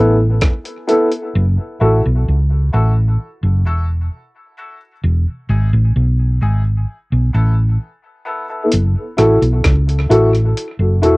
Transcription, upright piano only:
0.00 0.14 B3 medium
0.00 0.15 E4 medium
0.00 0.15 A4 medium
0.87 1.07 B3 medium
0.87 1.07 E4 medium
0.87 1.07 A4 loud
1.80 1.99 E4 medium
1.80 1.99 F#4 medium
1.80 2.00 A4 medium
2.72 2.91 E4 medium
2.72 2.92 F#4 medium
2.72 2.92 A4 loud
3.43 3.52 F#4 soft
3.43 3.52 A4 soft
3.65 3.84 E4 medium
3.65 3.84 F#4 medium
3.65 3.84 A4 loud
4.57 4.76 E4 medium
4.57 4.76 F#4 medium
4.57 4.77 A4 medium
4.82 4.91 F#4 soft
4.82 4.91 A4 soft
5.49 5.68 D#4 medium
5.49 5.68 E4 medium
5.49 5.68 G#4 medium
6.41 6.60 D#4 medium
6.41 6.60 E4 medium
6.41 6.61 G#4 medium
7.11 7.20 E4 soft
7.11 7.21 A4 soft
7.33 7.52 B3 medium
7.33 7.52 E4 medium
7.33 7.53 A4 loud
8.25 8.44 B3 medium
8.25 8.44 E4 medium
8.25 8.45 A4 medium
8.49 8.67 B3 medium
8.49 8.67 E4 medium
8.49 8.67 A4 medium
9.17 9.36 E4 medium
9.17 9.36 F#4 medium
9.17 9.37 A4 loud
10.09 10.28 E4 medium
10.09 10.29 F#4 medium
10.09 10.29 A4 loud
10.80 10.89 F#4 soft
10.80 10.89 A4 soft
11.02 11.17 E4 medium
11.02 11.17 F#4 medium
11.02 11.17 A4 loud

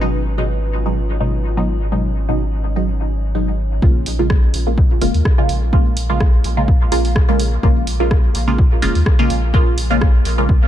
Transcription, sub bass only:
0.00 3.80 G#1 medium
4.54 4.97 A#1 medium
5.02 5.11 F1 medium
5.14 5.22 D#2 medium
5.49 6.39 A#1 medium
6.44 6.87 A#1 medium
6.92 7.58 A#1 medium
7.63 8.30 A#1 loud
8.35 8.77 A#1 medium
8.82 8.92 F1 medium
8.95 9.03 D#2 medium
9.30 10.20 A#1 medium
10.25 10.48 A#1 medium
10.49 10.58 C#2 medium

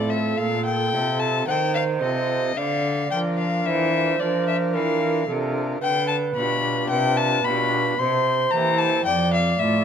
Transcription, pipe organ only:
0.00 0.34 A2 soft
0.00 0.34 C4 soft
0.00 0.89 F4 soft
0.00 0.89 A4 soft
0.39 0.89 A#2 soft
0.93 1.43 C3 medium
0.93 1.43 C4 soft
0.93 1.43 F4 soft
0.93 1.43 A4 soft
1.46 1.97 D#3 soft
2.01 2.52 C3 soft
2.01 2.52 C4 soft
2.01 2.52 F4 soft
2.01 2.52 A4 soft
2.57 3.07 D3 soft
3.11 3.61 F3 soft
3.11 4.16 D4 soft
3.11 4.16 F4 soft
3.11 4.16 A#4 soft
3.65 4.15 E3 soft
4.20 4.70 F3 medium
4.20 5.24 D4 soft
4.20 5.23 F4 soft
4.20 5.24 A#4 soft
4.75 5.24 E3 medium
5.29 5.78 C3 medium
5.29 5.78 D4 soft
5.29 5.78 F4 soft
5.29 5.78 A#4 soft
5.83 6.32 D3 soft
6.36 6.86 B2 medium
6.36 7.40 D4 soft
6.36 7.40 F4 soft
6.36 7.40 G4 soft
6.91 7.40 C3 medium
7.45 7.94 B2 medium
7.45 7.94 D4 soft
7.45 7.94 F4 soft
7.45 7.95 G4 soft
7.99 8.48 C3 medium
8.51 9.01 E3 medium
8.51 9.01 A#3 soft
8.51 9.01 E4 soft
8.51 9.01 G4 soft
9.05 9.55 F2 soft
9.60 9.84 A2 medium
9.60 9.84 A3 soft
9.60 9.84 F4 soft
9.60 9.84 A4 soft

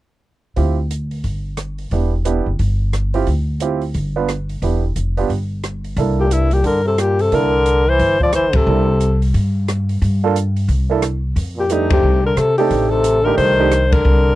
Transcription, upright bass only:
0.57 1.21 D2 medium
1.24 1.89 G1 medium
1.91 2.43 E1 medium
2.46 2.59 F#1 medium
2.59 3.24 G1 medium
3.27 3.91 D2 medium
3.94 4.59 G1 medium
4.62 4.94 E1 medium
4.96 5.27 F1 medium
5.29 5.94 G1 medium
5.97 6.61 C2 medium
6.64 7.28 G2 medium
7.32 7.96 C2 medium
7.99 8.50 G1 medium
8.53 8.66 B1 medium
8.67 9.31 C2 medium
9.34 9.98 G2 medium
10.02 10.66 G2 medium
10.68 11.33 C2 medium
11.36 12.00 F2 medium
12.03 12.34 C2 medium
12.37 12.69 C3 medium
12.70 13.35 A1 medium
13.37 14.02 C2 medium
14.05 14.35 C2 medium

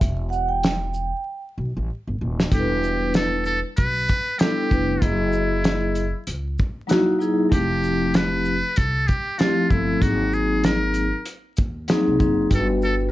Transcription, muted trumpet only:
2.54 3.11 G4 medium
3.16 3.44 A4 medium
3.46 3.60 A4 medium
3.77 4.41 B4 loud
4.39 5.03 G4 medium
5.02 6.27 E4 medium
7.53 8.17 G4 medium
8.16 8.79 B4 loud
8.77 9.09 A4 loud
9.07 9.40 G4 medium
9.39 9.72 F4 medium
9.70 10.03 E4 medium
10.02 10.35 F#4 medium
10.34 10.66 G#4 medium
10.65 11.27 A#4 medium
12.54 12.68 A4 medium
12.84 12.95 A4 medium

